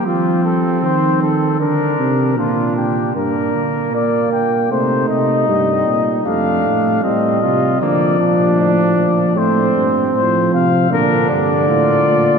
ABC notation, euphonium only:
X:1
M:4/4
L:1/8
Q:1/4=77
K:Fdor
V:1 name="Euphonium" clef=bass
z8 | D2 B,2 =A,2 G,2 | =A,2 G,2 F,4 | =A, z F,2 D,4 |]